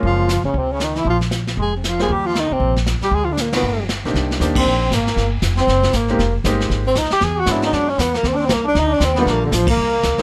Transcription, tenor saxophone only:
X:1
M:4/4
L:1/8
Q:"Swing" 1/4=234
K:Eb
V:1 name="Tenor saxophone"
F3 _D C D E _F | F z3 A C F A | G F E C2 z2 G | (3A F D B, _C3 z2 |
[K:Cm] z3 C3 B,2- | B, z2 C3 ^A,2- | ^A, z4 C E G | ^G ^F =E _E D ^C =B, _B, |
(3C D C B, D E D C =B, | B, D, F, B,4- B, |]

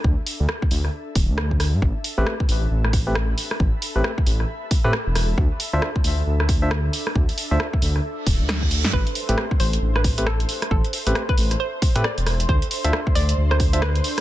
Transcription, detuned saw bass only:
X:1
M:4/4
L:1/16
Q:"Swing 16ths" 1/4=135
K:Am
V:1 name="Detuned saw bass" clef=bass
D,, z2 D,, z2 D,, z3 D,,, D,,4 G,, | A,,, z2 A,,, z2 A,,, z A,,,6 z2 | A,,, z2 A,,, z2 A,,, z4 A,, z E,,,3 | D,, z2 D,, z2 D,, z D,,6 z2 |
D,, z2 D,, z2 D,, z3 D,,, D,,4 G,, | A,,, z2 A,,, z2 A,,, z A,,,6 z2 | A,,, z2 A,,, z2 A,,, z4 A,, z E,,,3 | D,, z2 D,, z2 D,, z D,,6 z2 |]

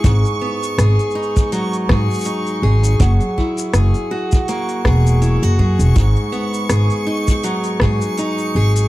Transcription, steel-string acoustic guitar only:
X:1
M:4/4
L:1/16
Q:"Swing 16ths" 1/4=81
K:G#m
V:1 name="Steel-string acoustic guitar"
G,,2 B,2 G2 D2 F,2 G2 D2 G2 | F,2 E2 G2 F2 A,2 G2 E F G2 | G,,2 B,2 G2 D2 F,2 G2 D2 G2 |]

